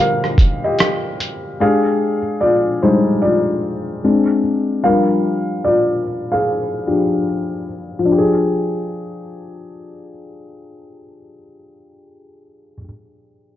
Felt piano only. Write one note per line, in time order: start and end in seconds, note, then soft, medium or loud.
0.00 0.75 D3 medium
0.00 0.75 F3 soft
0.00 0.75 G3 medium
0.00 1.61 F4 medium
0.00 0.65 G4 medium
0.00 1.61 A#4 medium
0.00 1.61 D5 medium
0.00 0.64 D#5 medium
0.00 1.61 F5 loud
0.64 1.16 G4 medium
0.64 1.15 D#5 medium
1.60 2.18 G#3 soft
1.60 2.18 D4 medium
1.60 2.18 G4 medium
1.60 2.38 G#4 medium
1.60 2.44 F5 medium
2.41 2.79 F4 medium
2.41 2.78 D5 medium
2.83 3.19 G3 soft
2.83 3.19 G#3 soft
2.83 3.19 D4 medium
2.83 3.20 D#4 medium
2.83 3.20 C5 medium
3.22 4.40 F4 medium
3.22 4.39 D5 medium
4.04 4.80 G#3 soft
4.04 4.81 C4 soft
4.04 4.81 D4 medium
4.84 6.02 F3 soft
4.84 6.02 G3 soft
4.84 6.02 D4 medium
4.84 5.62 A#4 medium
4.84 5.67 F5 medium
5.64 6.28 F4 medium
5.64 6.33 D5 medium
6.32 7.65 G#4 medium
6.32 7.64 F5 medium
6.87 7.23 F3 soft
6.87 7.23 D4 soft
6.87 7.23 G4 soft
7.99 12.74 F3 medium
8.05 12.77 D4 medium
8.12 12.80 G4 medium
8.18 12.84 G#4 medium